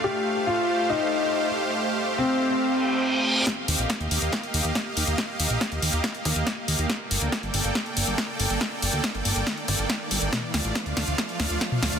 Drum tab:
HH |----------------|----------------|x-oxxxoxxxoxx-ox|x-oxxxoxxxoxx-ox|
SD |----------------|----------------|o---o---o---o---|o---o---o---o---|
T2 |----------------|----------------|----------------|----------------|
BD |----------------|----------------|o---o---o---o---|o---o---o-o-o---|

HH |x-oxxxoxxxoxx-ox|x-oxxxoxxxoxx-ox|x-oxxxoxxxoxx-ox|
SD |o---o---o---o---|o---o---o---o---|o-o-o-o-o-o-o-o-|
T2 |----------------|----------------|o------------o--|
BD |o---o---o---o---|o---o---o-o-o---|o---o---o---o---|